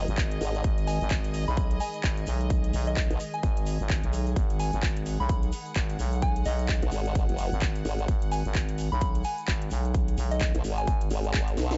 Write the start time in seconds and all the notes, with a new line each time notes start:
Already playing: D#3 G#3 G#4 D#5
0.08 G#1, closed hi-hat, shaker
0.17 kick, clap, closed hi-hat, shaker
0.31 closed hi-hat, shaker
0.41 G#1, open hi-hat, shaker
0.54 closed hi-hat, shaker
0.64 G#1, kick, closed hi-hat, shaker
0.78 closed hi-hat, shaker
0.87 G#5, open hi-hat, shaker
1.01 G#1, closed hi-hat, shaker
1.11 kick, clap, closed hi-hat, shaker
1.24 closed hi-hat, shaker
1.34 open hi-hat, shaker
1.48 B1 B5, shaker
1.57 kick, closed hi-hat, shaker
1.71 closed hi-hat, shaker
1.80 G#5, open hi-hat, shaker
1.94 closed hi-hat, shaker
2.04 G#1, kick, clap, closed hi-hat, shaker
2.17 closed hi-hat, shaker
2.27 B1, open hi-hat, shaker
2.40 closed hi-hat, shaker
2.50 kick, closed hi-hat, shaker
2.64 closed hi-hat, shaker
2.73 B1, open hi-hat, shaker
2.87 D#5, closed hi-hat, shaker
2.96 kick, clap, closed hi-hat, shaker
3.11 B1, closed hi-hat, shaker
3.20 open hi-hat, shaker
3.34 G#5, closed hi-hat, shaker
3.43 G#1, kick, closed hi-hat, shaker
3.57 closed hi-hat, shaker
3.66 open hi-hat, shaker
3.80 G#1, closed hi-hat, shaker
3.90 kick, clap, closed hi-hat, shaker
4.03 B1, closed hi-hat, shaker
4.13 open hi-hat, shaker
4.27 closed hi-hat, shaker
4.36 G#1 F#5, kick, closed hi-hat, shaker
4.50 closed hi-hat, shaker
4.60 G#5, open hi-hat, shaker
4.73 G#1, closed hi-hat, shaker
4.83 kick, clap, closed hi-hat, shaker
4.96 closed hi-hat, shaker
5.06 open hi-hat, shaker
5.20 B1 B5, shaker
5.29 kick, closed hi-hat, shaker
5.42 closed hi-hat, shaker
5.52 open hi-hat, shaker
5.66 closed hi-hat, shaker
5.75 G#1, kick, clap, closed hi-hat, shaker
5.90 closed hi-hat, shaker
5.99 B1, open hi-hat, shaker
6.13 closed hi-hat, shaker
6.22 G#5, kick, closed hi-hat, shaker
6.36 closed hi-hat, shaker
6.45 B1 D#5, open hi-hat, shaker
6.59 closed hi-hat, shaker
6.69 kick, clap, closed hi-hat, shaker
6.82 B1, closed hi-hat, shaker
6.91 G#1, open hi-hat, shaker
7.06 closed hi-hat, shaker
7.15 kick, closed hi-hat, shaker
7.29 F#1, closed hi-hat, shaker
7.38 open hi-hat, shaker
7.52 G#1, closed hi-hat, shaker
7.61 kick, clap, closed hi-hat, shaker
7.76 closed hi-hat, shaker
7.85 G#1, open hi-hat, shaker
7.99 closed hi-hat, shaker
8.08 G#1, kick, closed hi-hat, shaker
8.22 closed hi-hat, shaker
8.32 G#5, open hi-hat, shaker
8.45 G#1, closed hi-hat, shaker
8.55 kick, clap, closed hi-hat, shaker
8.69 closed hi-hat, shaker
8.78 open hi-hat, shaker
8.92 B1 B5, shaker
9.01 kick, closed hi-hat, shaker
9.15 closed hi-hat, shaker
9.24 G#5, open hi-hat, shaker
9.38 closed hi-hat, shaker
9.48 G#1, kick, clap, closed hi-hat, shaker
9.62 closed hi-hat, shaker
9.71 B1, open hi-hat, shaker
9.85 closed hi-hat, shaker
9.94 kick, closed hi-hat, shaker
10.08 closed hi-hat, shaker
10.18 B1, open hi-hat, shaker
10.31 D#5, closed hi-hat, shaker
10.41 kick, clap, closed hi-hat, shaker
10.54 B1, closed hi-hat, shaker
10.64 G#1, open hi-hat, shaker
10.78 G#5, closed hi-hat, shaker
10.87 G#1, kick, closed hi-hat, shaker
11.01 closed hi-hat, shaker
11.11 G#1, open hi-hat, shaker
11.24 closed hi-hat, shaker
11.34 G#1, kick, clap, closed hi-hat, shaker
11.48 closed hi-hat, shaker
11.57 B1, snare, open hi-hat, shaker
11.71 snare, closed hi-hat, shaker